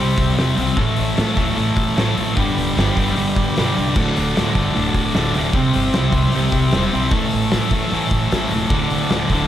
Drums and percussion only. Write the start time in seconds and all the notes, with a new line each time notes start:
0.17 kick, open hi-hat
0.37 snare, open hi-hat
0.57 open hi-hat
0.76 kick, open hi-hat
0.96 open hi-hat
1.17 snare, open hi-hat
1.37 kick, open hi-hat
1.57 open hi-hat
1.77 kick, open hi-hat
1.97 snare, open hi-hat
2.17 open hi-hat
2.37 kick, open hi-hat
2.58 open hi-hat
2.78 snare, open hi-hat
2.97 kick, open hi-hat
3.17 open hi-hat
3.36 kick, open hi-hat
3.56 snare, open hi-hat
3.77 open hi-hat
3.96 kick, crash
4.16 open hi-hat
4.36 snare, open hi-hat
4.55 kick, open hi-hat
4.76 open hi-hat
4.94 kick, open hi-hat
5.14 snare, open hi-hat
5.34 open hi-hat
5.53 kick, open hi-hat
5.73 open hi-hat
5.93 snare, open hi-hat
6.12 kick, open hi-hat
6.32 open hi-hat
6.52 kick, open hi-hat
6.71 snare, open hi-hat
6.91 open hi-hat
7.11 kick, open hi-hat
7.30 open hi-hat
7.51 snare, open hi-hat
7.70 kick, open hi-hat
7.91 open hi-hat
8.11 kick, open hi-hat
8.31 snare, open hi-hat
8.50 open hi-hat
8.70 kick, open hi-hat
8.90 open hi-hat
9.09 snare, open hi-hat
9.30 kick, open hi-hat